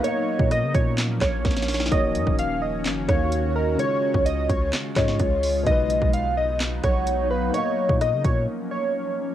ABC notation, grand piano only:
X:1
M:4/4
L:1/8
Q:1/4=128
K:Bbphr
V:1 name="Grand piano"
[B,Bdf]8 | [E,B,Gd]4- [E,B,Gd] [E,B,Gd]3 | [D,A,Fd]4- [D,A,Fd] [D,A,Fd]3 | [=B,,^F,^D=B]8 |
[B,Bdf]8 |]